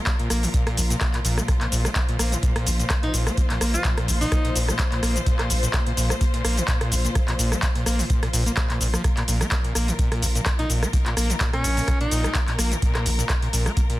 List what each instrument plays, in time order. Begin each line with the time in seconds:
Already playing: string section A#2 F3 F4 A#4
0.07 acid bass A#3, kick, clap, closed hi-hat, shaker
0.19 acid bass A#2, closed hi-hat
0.30 sub bass A#1, acid bass A#3, cross-stick, open hi-hat, shaker
0.43 acid bass D#3, open hi-hat, shaker
0.54 acid bass A#2, kick, closed hi-hat, shaker
0.67 acid bass A#2, cross-stick, closed hi-hat
0.77 sub bass A#1, acid bass A#1, open hi-hat, shaker
0.90 acid bass A#2, closed hi-hat, shaker
1.01 acid bass A#2, kick, cross-stick, clap, closed hi-hat, shaker
1.14 acid bass A#2, clap, closed hi-hat
1.25 sub bass A#1, acid bass A#2, open hi-hat, shaker
1.38 acid bass A#3, cross-stick, closed hi-hat, shaker
1.48 acid bass A#2, string section C5, kick, cross-stick, closed hi-hat, shaker
1.61 acid bass A#2, clap, closed hi-hat
1.72 sub bass A#1, acid bass A#2, open hi-hat, shaker
1.85 acid bass A#3, cross-stick, closed hi-hat, shaker
1.96 acid bass A#3, kick, clap, closed hi-hat, shaker
2.09 acid bass A#2, closed hi-hat
2.19 sub bass A#1, acid bass A#3, cross-stick, open hi-hat, shaker
2.32 acid bass D#3, closed hi-hat, shaker
2.43 acid bass A#2, kick, closed hi-hat, shaker
2.56 acid bass A#2, cross-stick, closed hi-hat
2.67 acid bass A#1, sub bass A#1, open hi-hat, shaker
2.79 acid bass A#2, closed hi-hat, shaker
2.90 acid bass A#2, kick, cross-stick, clap, closed hi-hat, shaker
3.03 acid bass A#2, alto saxophone D#4, closed hi-hat
3.14 sub bass A#1, acid bass A#2, open hi-hat, shaker
3.27 acid bass A#3, cross-stick, closed hi-hat, shaker
3.37 acid bass A#3, kick, closed hi-hat, shaker
3.50 acid bass A#2, clap, closed hi-hat
3.61 sub bass A#1, acid bass A#3, cross-stick, open hi-hat, shaker
3.74 acid bass D#3, alto saxophone F4, closed hi-hat, shaker
3.85 acid bass A#2, kick, clap, closed hi-hat, shaker
3.98 acid bass A#2, cross-stick, closed hi-hat
4.08 sub bass A#1, acid bass A#1, open hi-hat, shaker
4.21 acid bass A#2, alto saxophone D#4, open hi-hat, shaker
4.32 acid bass A#2, kick, cross-stick, closed hi-hat, shaker
4.45 acid bass A#2, closed hi-hat
4.56 sub bass A#1, acid bass A#2, open hi-hat, shaker
4.68 acid bass A#3, cross-stick, closed hi-hat, shaker
4.79 acid bass A#3, kick, clap, closed hi-hat, shaker
4.92 acid bass A#2, clap, closed hi-hat
5.03 sub bass A#1, acid bass A#3, cross-stick, open hi-hat, shaker
5.16 acid bass D#3, closed hi-hat, shaker
5.26 acid bass A#2, kick, closed hi-hat, shaker
5.39 acid bass A#2, cross-stick, clap, closed hi-hat
5.50 sub bass A#1, acid bass A#1, open hi-hat, shaker
5.63 acid bass A#2, closed hi-hat, shaker
5.74 acid bass A#2, kick, cross-stick, clap, closed hi-hat, shaker
5.87 acid bass A#2, closed hi-hat
5.97 sub bass A#1, acid bass A#2, open hi-hat, shaker
6.10 acid bass A#3, cross-stick, closed hi-hat, shaker
6.21 acid bass A#3, kick, closed hi-hat, shaker
6.34 acid bass A#2, closed hi-hat
6.44 sub bass A#1, acid bass A#3, cross-stick, open hi-hat, shaker
6.57 acid bass D#3, closed hi-hat, shaker
6.68 acid bass A#2, kick, clap, closed hi-hat, shaker
6.81 acid bass A#2, cross-stick, closed hi-hat
6.92 sub bass A#1, acid bass A#1, open hi-hat, shaker
7.05 acid bass A#2, closed hi-hat, shaker
7.15 acid bass A#2, kick, cross-stick, closed hi-hat, shaker
7.28 acid bass A#2, clap, closed hi-hat
7.39 sub bass A#1, acid bass A#2, open hi-hat, shaker
7.52 acid bass A#3, cross-stick, closed hi-hat, shaker
7.62 acid bass A#3, kick, clap, closed hi-hat, shaker
7.75 acid bass A#2, closed hi-hat
7.86 sub bass A#1, acid bass A#3, cross-stick, open hi-hat, shaker
7.99 acid bass D#3, open hi-hat, shaker
8.10 acid bass A#2, kick, closed hi-hat, shaker
8.23 acid bass A#2, cross-stick, closed hi-hat
8.33 sub bass A#1, acid bass A#2, open hi-hat, shaker
8.46 acid bass A#3, closed hi-hat, shaker
8.57 acid bass A#2, kick, cross-stick, clap, closed hi-hat, shaker
8.70 acid bass A#2, clap, closed hi-hat
8.81 sub bass A#1, acid bass A#2, open hi-hat, shaker
8.94 acid bass F3, cross-stick, closed hi-hat, shaker
9.04 acid bass A#2, string section A#4, kick, cross-stick, closed hi-hat, shaker
9.17 acid bass A#2, clap, closed hi-hat
9.28 sub bass A#1, acid bass A#2, open hi-hat, shaker
9.41 acid bass A#3, cross-stick, closed hi-hat, shaker
9.51 acid bass A#3, kick, clap, closed hi-hat, shaker
9.64 acid bass A#2, closed hi-hat
9.75 sub bass A#1, acid bass A#3, cross-stick, open hi-hat, shaker
9.88 acid bass D#3, closed hi-hat, shaker
9.99 acid bass A#2, kick, closed hi-hat, shaker
10.12 acid bass A#2, cross-stick, closed hi-hat
10.22 sub bass A#1, acid bass A#1, open hi-hat, shaker
10.35 acid bass A#2, closed hi-hat, shaker
10.46 acid bass A#2, kick, cross-stick, clap, closed hi-hat, shaker
10.59 acid bass A#2, alto saxophone D#4, closed hi-hat
10.70 sub bass A#1, acid bass A#2, open hi-hat, shaker
10.83 acid bass A#3, cross-stick, closed hi-hat, shaker
10.93 acid bass A#3, kick, closed hi-hat, shaker
11.06 acid bass A#2, clap, closed hi-hat
11.17 sub bass A#1, acid bass A#3, cross-stick, open hi-hat, shaker
11.30 acid bass D#3, closed hi-hat, shaker
11.40 acid bass A#2, kick, clap, closed hi-hat, shaker
11.53 acid bass A#2, alto saxophone C#4, cross-stick, closed hi-hat
11.64 sub bass A#1, acid bass A#1, open hi-hat, shaker
11.77 acid bass A#2, open hi-hat, shaker
11.88 acid bass A#2, kick, cross-stick, closed hi-hat, shaker
12.01 acid bass A#2, alto saxophone D#4, closed hi-hat
12.11 sub bass A#1, acid bass A#2, open hi-hat, shaker
12.24 acid bass A#3, cross-stick, closed hi-hat, shaker
12.35 acid bass A#3, kick, clap, closed hi-hat, shaker
12.48 acid bass A#2, clap, closed hi-hat
12.59 sub bass A#1, acid bass A#3, cross-stick, open hi-hat, shaker
12.72 acid bass D#3, closed hi-hat, shaker
12.82 acid bass A#2, kick, closed hi-hat, shaker
12.95 acid bass A#2, cross-stick, clap, closed hi-hat
13.06 acid bass A#1, sub bass A#1, open hi-hat, shaker
13.19 acid bass A#2, closed hi-hat, shaker
13.29 acid bass A#2, kick, cross-stick, clap, closed hi-hat, shaker
13.42 acid bass A#2, closed hi-hat
13.53 sub bass A#1, acid bass A#2, open hi-hat, shaker
13.66 acid bass A#3, cross-stick, closed hi-hat, shaker
13.77 acid bass A#3, kick, closed hi-hat, shaker
13.90 acid bass A#2, closed hi-hat